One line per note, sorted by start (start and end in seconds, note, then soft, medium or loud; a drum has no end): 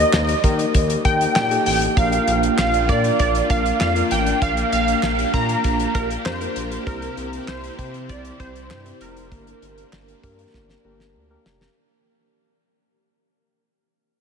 0.00 0.32 A#3 medium
0.00 0.32 D#4 medium
0.00 0.32 G4 medium
0.00 0.32 A#4 medium
0.00 0.40 D#5 loud
0.13 0.35 D#2 loud
0.13 snare loud
0.13 clap loud
0.29 closed hi-hat medium
0.44 0.65 D#3 loud
0.44 0.97 A#3 medium
0.44 0.97 D#4 medium
0.44 0.97 G4 medium
0.44 0.97 A#4 medium
0.44 kick medium
0.44 closed hi-hat medium
0.59 closed hi-hat medium
0.74 0.96 D#2 loud
0.74 kick medium
0.74 closed hi-hat medium
0.90 closed hi-hat medium
1.05 1.27 D#2 loud
1.05 1.45 A#3 medium
1.05 1.45 D#4 medium
1.05 1.45 G4 medium
1.05 1.45 A#4 medium
1.05 1.35 G5 loud
1.05 kick loud
1.05 closed hi-hat medium
1.21 closed hi-hat medium
1.36 1.57 A#2 loud
1.36 1.64 G5 loud
1.36 snare loud
1.36 clap loud
1.51 1.91 A#3 medium
1.51 1.91 D#4 medium
1.51 1.91 G4 medium
1.51 1.91 A4 medium
1.51 closed hi-hat medium
1.66 1.88 A1 medium
1.66 1.80 G5 loud
1.66 open hi-hat medium
1.82 closed hi-hat medium
1.97 2.18 A#1 loud
1.97 2.77 A#3 medium
1.97 6.83 A#3 medium
1.97 6.83 D4 medium
1.97 2.77 D4 medium
1.97 4.39 F4 medium
1.97 2.77 F4 medium
1.97 2.77 A#4 medium
1.97 2.57 F5 loud
1.97 kick loud
1.97 closed hi-hat medium
2.12 closed hi-hat medium
2.28 2.49 A#1 loud
2.28 closed hi-hat medium
2.43 closed hi-hat medium
2.58 2.90 A#1 loud
2.58 2.90 F5 loud
2.58 snare loud
2.58 clap loud
2.74 closed hi-hat medium
2.89 3.10 A#2 loud
2.89 3.42 A#3 medium
2.89 3.42 D4 medium
2.89 3.42 F4 medium
2.89 3.42 A#4 medium
2.89 3.17 D5 loud
2.89 kick medium
2.89 closed hi-hat medium
3.04 closed hi-hat medium
3.19 3.41 A#1 loud
3.19 3.51 D5 loud
3.19 kick medium
3.19 closed hi-hat medium
3.35 closed hi-hat medium
3.50 3.71 A#1 loud
3.50 3.90 A#3 medium
3.50 3.90 D4 medium
3.50 3.90 F4 medium
3.50 3.90 A#4 medium
3.50 3.80 F5 loud
3.50 kick loud
3.50 closed hi-hat medium
3.66 closed hi-hat medium
3.81 4.02 F2 loud
3.81 4.12 F5 loud
3.81 snare loud
3.81 clap loud
3.96 4.36 A#3 medium
3.96 4.36 D4 medium
3.96 4.36 F4 medium
3.96 4.36 A#4 medium
3.96 closed hi-hat medium
4.11 4.33 A1 medium
4.11 4.43 G5 loud
4.11 closed hi-hat medium
4.26 closed hi-hat medium
4.42 4.63 A#1 loud
4.42 5.22 A#3 medium
4.42 5.22 D4 medium
4.42 5.22 F4 medium
4.42 11.73 G4 medium
4.42 5.22 A#4 medium
4.42 4.71 F5 loud
4.42 kick loud
4.42 closed hi-hat medium
4.57 closed hi-hat medium
4.72 4.94 A#1 loud
4.72 5.36 F5 loud
4.72 closed hi-hat medium
4.88 closed hi-hat medium
5.03 5.25 A#1 medium
5.03 snare loud
5.03 clap loud
5.19 closed hi-hat medium
5.34 5.55 A#2 loud
5.34 5.87 A#3 medium
5.34 5.87 D4 medium
5.34 5.87 F4 medium
5.34 5.87 A#4 medium
5.34 5.97 A#5 loud
5.34 kick medium
5.34 closed hi-hat medium
5.49 closed hi-hat medium
5.64 5.86 A#1 loud
5.64 kick medium
5.64 closed hi-hat medium
5.80 closed hi-hat medium
5.95 6.16 A#1 loud
5.95 6.35 A#3 medium
5.95 6.35 D4 medium
5.95 6.35 F4 medium
5.95 6.35 A#4 medium
5.95 6.09 A#4 loud
5.95 kick loud
5.95 closed hi-hat medium
6.11 closed hi-hat medium
6.25 6.47 F2 loud
6.25 6.89 C5 loud
6.25 snare loud
6.25 clap loud
6.41 6.81 A#3 medium
6.41 6.81 D4 medium
6.41 6.81 F4 medium
6.41 6.81 A#4 medium
6.41 closed hi-hat medium
6.56 6.78 A#1 medium
6.56 closed hi-hat medium
6.72 closed hi-hat medium
6.87 7.08 C2 loud
6.87 9.29 C3 medium
6.87 7.67 C4 medium
6.87 9.29 C4 medium
6.87 7.67 E4 medium
6.87 9.29 E4 medium
6.87 7.67 G4 medium
6.87 7.50 A#4 loud
6.87 7.67 C5 medium
6.87 kick loud
6.87 closed hi-hat medium
7.02 closed hi-hat medium
7.17 7.39 C2 loud
7.17 closed hi-hat medium
7.33 closed hi-hat medium
7.48 7.69 C2 loud
7.48 8.11 C5 loud
7.48 snare loud
7.48 clap loud
7.64 closed hi-hat medium
7.79 8.11 C3 loud
7.79 8.32 C4 medium
7.79 8.32 E4 medium
7.79 8.32 G4 medium
7.79 8.32 C5 medium
7.79 kick medium
7.79 closed hi-hat medium
7.94 closed hi-hat medium
8.09 8.31 C2 loud
8.09 8.41 D5 loud
8.09 kick medium
8.09 closed hi-hat medium
8.25 closed hi-hat medium
8.40 8.72 C2 loud
8.40 8.80 C4 medium
8.40 8.80 E4 medium
8.40 8.80 G4 medium
8.40 8.80 C5 medium
8.40 9.03 C5 loud
8.40 kick loud
8.40 closed hi-hat medium
8.56 closed hi-hat medium
8.70 8.92 G2 loud
8.70 snare loud
8.70 clap loud
8.85 9.26 C4 medium
8.85 9.26 E4 medium
8.85 9.26 G4 medium
8.85 9.26 C5 medium
8.85 closed hi-hat medium
9.01 9.33 F1 medium
9.01 11.12 A#4 loud
9.01 closed hi-hat medium
9.17 closed hi-hat medium
9.31 9.53 G1 loud
9.31 10.12 A#3 medium
9.31 11.74 A#3 medium
9.31 11.74 D4 medium
9.31 10.12 D4 medium
9.31 10.12 G4 medium
9.31 10.12 A#4 medium
9.31 kick loud
9.31 closed hi-hat medium
9.47 closed hi-hat medium
9.62 9.84 G1 loud
9.62 closed hi-hat medium
9.78 closed hi-hat medium
9.93 10.14 G1 loud
9.93 snare loud
9.93 clap loud
10.08 closed hi-hat medium
10.23 10.45 G2 loud
10.23 10.77 A#3 medium
10.23 10.77 D4 medium
10.23 10.77 G4 medium
10.23 10.77 A#4 loud
10.23 kick medium
10.23 closed hi-hat medium
10.39 closed hi-hat medium
10.54 10.76 G1 loud
10.54 kick medium
10.54 snare medium
10.70 snare medium
10.85 11.17 G1 loud
10.85 11.25 A#3 medium
10.85 11.25 D4 medium
10.85 11.25 G4 medium
10.85 11.25 A#4 loud
11.00 snare medium
11.15 11.37 D2 loud
11.30 11.71 A#3 medium
11.30 11.71 D4 medium
11.30 11.71 G4 medium
11.30 11.71 A#4 loud
11.46 11.67 F1 loud
11.46 snare loud
11.61 snare loud